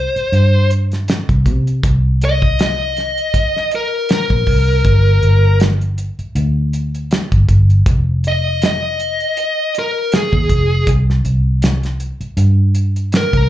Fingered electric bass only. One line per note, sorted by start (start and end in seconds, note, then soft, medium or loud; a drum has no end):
0.16 muted fingered electric bass stroke soft
0.32 1.19 G2 medium
1.29 1.47 C2 medium
1.46 1.79 C3 medium
1.83 3.18 C2 medium
4.30 4.45 A#1 medium
4.47 4.81 C2 medium
4.85 5.18 G1 loud
5.23 6.09 G1 medium
6.19 muted fingered electric bass stroke soft
6.35 7.22 D2 medium
7.32 7.47 G1 medium
7.49 7.82 G1 loud
7.86 9.21 F1 medium
10.33 10.48 D#2 medium
10.49 10.83 F1 medium
10.87 11.21 C2 loud
11.25 12.11 C2 medium
12.21 muted fingered electric bass stroke soft
12.37 13.23 G2 medium
13.33 13.49 C2 medium